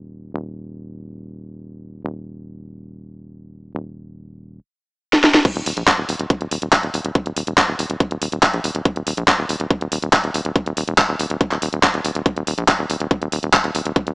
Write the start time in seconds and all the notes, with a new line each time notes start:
Already playing: D#1
0.34 D#1
2.05 D#1
3.75 D#1
5.13 snare
5.24 snare
5.34 snare
5.45 kick, closed hi-hat, crash
5.56 D#1, closed hi-hat
5.66 D#1, open hi-hat
5.77 A#1, closed hi-hat
5.88 kick, clap, closed hi-hat
5.98 D#1
6.09 D#1, open hi-hat
6.19 D#1, closed hi-hat
6.30 kick, closed hi-hat
6.41 D#1, closed hi-hat
6.51 D#1, open hi-hat
6.62 D#1, closed hi-hat
6.73 kick, clap, closed hi-hat
6.83 D#1, closed hi-hat
6.94 D#1, open hi-hat
7.05 D#1, closed hi-hat
7.15 kick, closed hi-hat
7.26 D#1, closed hi-hat
7.36 D#1, open hi-hat
7.47 E1, closed hi-hat
7.58 kick, clap, closed hi-hat
7.68 D#1
7.79 D#1, open hi-hat
7.90 D#1, closed hi-hat
8.00 kick, closed hi-hat
8.11 D#1, closed hi-hat
8.22 D#1, open hi-hat
8.32 D#1, closed hi-hat
8.43 kick, clap, closed hi-hat
8.53 A#1, closed hi-hat
8.64 D#1, open hi-hat
8.75 D#1, closed hi-hat
8.85 kick, closed hi-hat
8.96 D#1, closed hi-hat
9.07 D#1, open hi-hat
9.17 A#1, closed hi-hat
9.28 kick, clap, closed hi-hat
9.39 D#1
9.49 D#1, open hi-hat
9.60 D#1, closed hi-hat
9.71 kick, closed hi-hat
9.81 D#1, closed hi-hat
9.92 D#1, open hi-hat
10.02 D#1, closed hi-hat
10.13 kick, clap, closed hi-hat
10.24 D#1, closed hi-hat
10.34 D#1, open hi-hat
10.45 D#1, closed hi-hat
10.56 kick, closed hi-hat
10.66 D#1, closed hi-hat
10.77 D#1, open hi-hat
10.88 E1, closed hi-hat
10.98 kick, clap, closed hi-hat
11.09 D#1
11.19 D#1, open hi-hat
11.30 D#1, closed hi-hat
11.41 kick, closed hi-hat
11.51 D#1, clap, closed hi-hat
11.62 D#1, open hi-hat
11.73 D#1, closed hi-hat
11.83 kick, clap, closed hi-hat
11.94 D#1, closed hi-hat
12.05 D#1, open hi-hat
12.15 D#1, closed hi-hat
12.26 kick, closed hi-hat
12.36 D#1, closed hi-hat
12.47 D#1, open hi-hat
12.58 A#1, closed hi-hat
12.68 kick, clap, closed hi-hat
12.79 D#1
12.90 D#1, open hi-hat
13.00 D#1, closed hi-hat
13.11 kick, closed hi-hat
13.22 D#1, closed hi-hat
13.32 D#1, open hi-hat
13.43 D#1, closed hi-hat
13.53 kick, clap, closed hi-hat
13.64 D#1, closed hi-hat
13.75 D#1, open hi-hat
13.85 D#1, closed hi-hat
13.96 kick, closed hi-hat
14.07 D#1, closed hi-hat